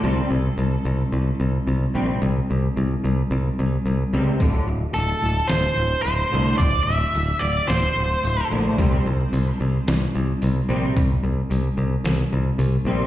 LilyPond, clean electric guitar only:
\new Staff \with { instrumentName = "Clean electric guitar" } { \clef bass \time 4/4 \key c \mixolydian \tempo 4 = 110 <c g c'>8 <c g>8 <c g>8 <c g>8 <c g>8 <c g>8 <c g>8 <c g c'>8 | <c g>8 <c g>8 <c g>8 <c g>8 <c g>8 <c g>8 <c g>8 <c g c'>8 | <d, a, d>8 <d, a,>8 <d, a,>8 <d, a,>8 <d, a,>8 <d, a,>8 <d, a,>8 <d, a, d>8 | <d, a,>8 <d, a,>8 <d, a,>8 <d, a,>8 <d, a,>8 <d, a,>8 <d, a,>8 <d, a, d>8 |
<c g c'>8 <c g>8 <c g>8 <c g>8 <c g>8 <c g>8 <c g>8 <c g c'>8 | <c g>8 <c g>8 <c g>8 <c g>8 <c g>8 <c g>8 <c g>8 <c g c'>8 | }